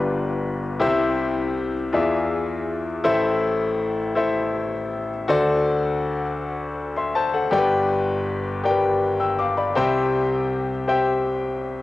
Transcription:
0.00 0.77 G1 medium
0.00 0.77 G2 medium
0.00 0.61 D4 medium
0.00 0.61 F4 medium
0.00 0.62 G4 medium
0.00 0.62 B4 medium
0.80 1.89 C2 medium
0.80 1.89 C3 medium
0.80 1.73 E4 medium
0.80 1.73 G4 medium
0.80 1.73 C5 medium
0.80 1.74 E5 medium
1.93 3.01 E2 medium
1.93 3.02 E3 medium
1.93 2.85 F4 medium
1.93 2.85 G#4 medium
1.93 2.86 D5 medium
1.93 2.86 E5 medium
3.04 5.25 A1 medium
3.04 5.25 A2 medium
3.04 3.97 E4 medium
3.04 3.97 A4 medium
3.04 3.97 C5 medium
3.04 3.98 E5 loud
4.15 5.08 E4 medium
4.15 5.09 A4 medium
4.15 5.09 C5 medium
4.15 5.10 E5 medium
5.28 7.49 D2 medium
5.28 7.49 D3 medium
5.28 6.21 F#4 medium
5.28 6.21 A4 medium
5.28 6.21 C5 medium
5.28 6.22 D5 loud
6.96 7.15 E5 medium
6.96 7.14 C6 medium
7.15 7.34 C5 medium
7.15 7.33 A5 medium
7.34 7.50 A4 medium
7.34 7.69 F#5 medium
7.51 9.72 G1 medium
7.51 9.72 G2 medium
7.51 8.44 G4 medium
7.51 7.59 A4 medium
7.51 8.45 D5 medium
7.51 8.45 G5 loud
7.58 8.48 B4 medium
8.64 9.56 G4 medium
8.64 8.71 A#4 soft
8.64 9.02 D5 medium
8.64 9.03 G5 medium
8.71 9.60 B4 medium
9.20 9.38 G5 medium
9.20 9.38 E6 medium
9.39 9.57 F5 soft
9.39 9.57 D6 medium
9.57 9.93 D5 soft
9.57 9.93 B5 medium
9.75 11.82 C2 medium
9.75 11.82 C3 medium
9.75 10.68 G4 medium
9.75 10.68 C5 medium
9.75 10.69 E5 medium
9.75 10.69 G5 medium
10.88 11.80 G4 medium
10.88 11.80 C5 medium
10.88 11.81 E5 medium
10.88 11.81 G5 medium

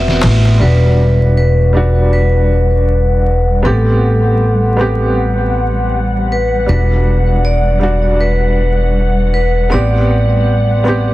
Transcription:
0.00 0.19 E1 loud
0.00 0.63 B3 medium
0.00 0.63 C4 medium
0.00 0.58 F#4 medium
0.00 0.63 G4 loud
0.00 0.63 E5 loud
0.08 snare soft
0.08 darbuka tek soft
0.22 0.57 A1 medium
0.22 snare soft
0.22 ride medium
0.22 darbuka tek medium
0.45 darbuka tek soft
0.58 3.62 E1 medium
0.58 1.70 G3 medium
0.58 11.14 G3 medium
0.58 1.71 D4 medium
0.58 1.36 B4 medium
0.58 11.14 F#5 medium
0.62 1.72 F#4 medium
1.37 2.09 B4 medium
1.73 3.60 G3 medium
1.73 3.61 D4 medium
1.73 3.62 F#4 medium
2.13 3.69 B4 medium
3.62 6.65 A1 medium
3.62 4.74 B3 medium
3.62 4.75 C4 medium
3.62 4.76 G4 medium
3.62 5.13 A4 medium
4.76 6.64 B3 medium
4.76 6.65 C4 medium
4.81 6.66 G4 medium
6.32 6.66 B4 medium
6.66 9.69 E1 medium
6.66 7.77 G3 medium
6.66 7.79 D4 medium
6.66 7.47 B4 medium
6.70 7.80 F#4 medium
7.45 8.23 D5 medium
7.79 9.67 G3 medium
7.79 9.68 D4 medium
7.83 9.69 F#4 medium
8.21 9.30 B4 medium
9.34 9.73 B4 medium
9.70 11.14 A1 medium
9.70 10.81 B3 medium
9.70 10.82 C4 medium
9.70 11.14 D5 medium
9.74 10.83 G4 medium
10.84 11.14 B3 medium
10.84 11.14 C4 medium
10.88 11.14 G4 medium

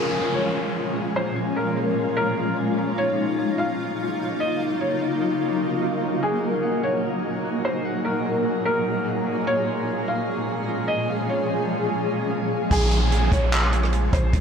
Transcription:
0.00 2.95 A#2 medium
0.00 2.95 F3 medium
0.00 2.95 G#3 medium
0.00 2.95 C#4 medium
0.00 0.84 F4 medium
0.00 6.18 F4 medium
0.00 0.31 G#4 medium
0.00 0.34 G#4 medium
0.00 1.77 A#4 medium
0.00 0.51 C5 medium
0.00 1.00 F5 medium
0.00 downlifter medium
0.15 1.36 G#5 medium
0.34 0.95 G#4 medium
0.34 1.11 C#5 medium
0.95 1.56 G#4 medium
1.16 1.35 C5 medium
1.36 1.96 G#5 medium
1.56 3.84 G#4 medium
1.56 1.76 A#4 medium
1.77 3.89 A#4 medium
1.97 2.57 G#5 medium
2.17 2.55 A#4 medium
2.57 4.07 G#5 medium
2.98 6.19 C#3 medium
2.98 6.19 F#3 medium
2.98 9.43 A#3 medium
2.98 3.58 D#4 loud
2.98 9.43 D#4 medium
2.98 3.55 C#5 medium
3.18 5.00 F4 medium
3.38 4.60 D#5 medium
3.58 4.19 D#4 medium
3.58 4.36 F5 medium
4.20 4.80 D#4 medium
4.40 4.59 D#5 medium
4.60 5.20 D#5 medium
4.80 7.51 D#4 medium
4.80 5.00 C#5 medium
5.01 6.29 F4 medium
5.21 5.82 D#5 medium
5.82 7.60 D#5 medium
6.22 12.67 A#2 medium
6.22 9.44 F#3 medium
6.22 6.83 F#4 medium
6.22 12.67 G#4 medium
6.22 6.80 G#4 medium
6.43 8.25 A#4 medium
6.63 7.84 F#5 medium
6.83 7.44 F#4 medium
6.83 7.60 C#5 medium
7.44 8.05 F#4 medium
7.65 7.84 C5 medium
7.85 8.45 F#5 medium
8.05 9.53 F#4 medium
8.05 8.24 A#4 medium
8.25 10.38 A#4 medium
8.45 9.06 F#5 medium
8.65 9.04 A#4 medium
9.06 9.53 F#5 medium
9.47 12.68 F3 medium
9.47 12.68 G#3 medium
9.47 12.68 C#4 medium
9.47 10.07 F4 loud
9.47 10.04 C#5 loud
9.67 10.98 C6 medium
9.87 11.09 F5 medium
10.07 10.68 F4 medium
10.07 10.85 F5 medium
10.68 11.29 F4 loud
10.88 11.07 D#5 medium
11.09 11.69 F5 medium
11.29 13.81 F4 medium
11.29 11.49 C#5 medium
11.50 13.48 C5 medium
11.70 12.30 F5 medium
12.30 13.97 F5 medium
12.71 13.29 A#1 loud
12.71 14.41 C#3 medium
12.71 14.41 F3 medium
12.71 14.41 G#3 medium
12.71 14.41 A#3 medium
12.71 14.41 F4 medium
12.71 13.28 G#4 loud
12.71 kick loud
12.71 closed hi-hat medium
12.71 downlifter medium
12.91 closed hi-hat medium
13.12 closed hi-hat medium
13.31 14.10 A#1 loud
13.31 14.09 C#5 medium
13.31 kick medium
13.31 closed hi-hat medium
13.52 clap loud
13.52 closed hi-hat medium
13.73 closed hi-hat medium
13.83 cross-stick loud
13.93 closed hi-hat medium
14.13 14.32 A#1 loud
14.13 14.32 C5 medium
14.13 kick loud
14.13 closed hi-hat medium
14.33 14.41 A#1 loud
14.33 kick loud
14.33 closed hi-hat medium

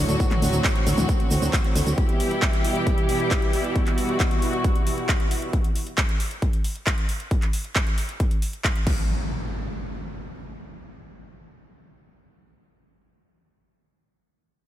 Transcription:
0.00 1.94 A2 medium
0.00 1.94 D3 medium
0.00 1.94 F#3 medium
0.00 0.18 D4 medium
0.00 1.94 F#4 medium
0.09 0.16 D2 medium
0.09 closed hi-hat soft
0.09 shaker medium
0.20 1.96 C4 medium
0.20 kick loud
0.20 closed hi-hat medium
0.20 shaker soft
0.31 clap soft
0.31 closed hi-hat soft
0.31 mid tom medium
0.42 0.49 D2 medium
0.42 open hi-hat loud
0.42 shaker medium
0.53 0.60 D2 medium
0.53 closed hi-hat soft
0.53 shaker medium
0.64 kick loud
0.64 clap loud
0.64 closed hi-hat medium
0.64 shaker soft
0.76 closed hi-hat soft
0.87 0.94 D2 loud
0.87 open hi-hat loud
0.87 shaker medium
0.98 1.05 D2 medium
0.98 closed hi-hat soft
0.98 mid tom medium
0.98 shaker medium
1.09 kick loud
1.09 closed hi-hat medium
1.09 shaker soft
1.20 closed hi-hat soft
1.31 1.38 D2 medium
1.31 open hi-hat loud
1.31 shaker loud
1.42 1.49 D2 medium
1.42 closed hi-hat soft
1.42 shaker medium
1.53 kick loud
1.53 clap loud
1.53 closed hi-hat medium
1.53 shaker soft
1.64 closed hi-hat soft
1.76 1.83 D2 medium
1.76 open hi-hat loud
1.76 shaker medium
1.87 1.94 D2 medium
1.87 closed hi-hat soft
1.87 shaker medium
1.98 5.50 B2 medium
1.98 5.50 E3 medium
1.98 5.50 G3 medium
1.98 5.50 E4 medium
1.98 3.74 G4 medium
1.98 kick loud
1.98 closed hi-hat medium
2.09 closed hi-hat soft
2.20 open hi-hat loud
2.31 closed hi-hat soft
2.42 kick loud
2.42 clap loud
2.42 closed hi-hat medium
2.53 closed hi-hat soft
2.64 open hi-hat medium
2.76 closed hi-hat soft
2.87 kick loud
2.87 closed hi-hat medium
2.98 closed hi-hat soft
3.09 open hi-hat loud
3.20 closed hi-hat soft
3.31 kick loud
3.31 clap loud
3.31 closed hi-hat medium
3.42 closed hi-hat soft
3.53 open hi-hat loud
3.64 closed hi-hat soft
3.76 5.52 F#4 medium
3.76 kick loud
3.76 closed hi-hat medium
3.87 clap soft
3.87 closed hi-hat soft
3.98 open hi-hat medium
4.09 closed hi-hat soft
4.20 kick loud
4.20 clap loud
4.20 closed hi-hat medium
4.31 closed hi-hat soft
4.42 open hi-hat medium
4.53 closed hi-hat soft
4.64 kick loud
4.64 closed hi-hat medium
4.76 closed hi-hat soft
4.87 open hi-hat medium
4.98 closed hi-hat soft
5.09 kick loud
5.09 clap loud
5.09 closed hi-hat medium
5.20 closed hi-hat soft
5.31 open hi-hat loud
5.42 closed hi-hat soft
5.53 kick loud
5.53 closed hi-hat medium
5.64 closed hi-hat soft
5.76 open hi-hat medium
5.87 closed hi-hat soft
5.98 kick loud
5.98 clap loud
5.98 closed hi-hat medium
6.09 closed hi-hat soft
6.20 open hi-hat medium
6.31 closed hi-hat soft
6.42 kick loud
6.42 closed hi-hat medium
6.53 closed hi-hat soft
6.64 open hi-hat medium
6.76 closed hi-hat soft
6.87 kick loud
6.87 clap loud
6.87 closed hi-hat medium
6.98 closed hi-hat soft
7.09 open hi-hat medium
7.20 closed hi-hat soft
7.31 kick loud
7.31 closed hi-hat medium
7.42 clap soft
7.42 closed hi-hat soft
7.53 open hi-hat medium
7.64 closed hi-hat soft
7.76 kick loud
7.76 clap loud
7.76 closed hi-hat medium
7.87 closed hi-hat soft
7.98 open hi-hat medium
8.09 closed hi-hat soft
8.20 kick loud
8.20 closed hi-hat medium
8.31 closed hi-hat soft
8.42 open hi-hat medium
8.53 closed hi-hat soft
8.64 kick loud
8.64 clap loud
8.64 closed hi-hat medium
8.76 closed hi-hat soft
8.87 kick loud
8.87 crash medium
8.87 impact medium

